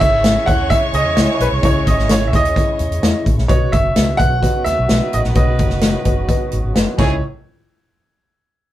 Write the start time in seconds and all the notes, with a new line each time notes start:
Already playing: C#3 G#3 C#4 E4 C#5 C#6
0.00 G#1 E5, kick, closed hi-hat
0.24 E4 C#5 E5, snare, closed hi-hat
0.46 D#2 E4 C#5 F#5, kick, closed hi-hat
0.70 E4 C#5 D#5 E5, kick, closed hi-hat
0.93 C#2 D#5, closed hi-hat
1.05 E2
1.17 C#2 E4 C#5 E5, snare, closed hi-hat
1.35 C#5
1.40 B1 B4, closed hi-hat
1.52 C2
1.62 C#2 C#3 E4 C#5 D#5, kick, closed hi-hat
1.87 G#1 D#5, kick, closed hi-hat
1.99 snare
2.09 E4 C#5 D#5, snare, closed hi-hat
2.27 E5
2.33 D#2 E4 C#5 D#5, kick, closed hi-hat
2.45 closed hi-hat
2.56 E4 C#5 D#5, kick, closed hi-hat
2.79 D#2, closed hi-hat
2.91 E2, closed hi-hat
3.03 E2 E4 C#5 D#5, snare, closed hi-hat
3.26 A1, kick, closed hi-hat
3.38 A#1, snare
3.48 B1 B2 F#3 B3 F#4 B4 C#5 D#5, kick, closed hi-hat
3.72 F#1 E5, kick, closed hi-hat
3.95 C#2 F#4 B4 D#5, snare, closed hi-hat
4.17 B1 F#4 B4 D#5 F#5, kick, closed hi-hat
4.42 D#3 F#3 B3 F#4 B4 D#5, kick, closed hi-hat
4.64 D#2 E5, snare, closed hi-hat
4.79 B1
4.88 B1 F#4 B4 D#5, snare, closed hi-hat
5.13 A1 D#5, closed hi-hat
5.24 A#1, snare
5.35 B1 B2 F#4 B4 C#5 D#5, kick, closed hi-hat
5.59 F#1, kick, closed hi-hat
5.70 snare
5.81 F#4 B4 D#5, snare, closed hi-hat
6.04 F#1 F#4 B4 D#5, kick, closed hi-hat
6.28 F#4 B4 D#5, kick, closed hi-hat
6.52 G#1, closed hi-hat
6.64 G#1
6.74 F#1 F#4 B4 D#5, snare, closed hi-hat
6.97 C#2 D#3 E3 G#3 C#4 D#4 E4 G#4 C#5 D#5, kick, crash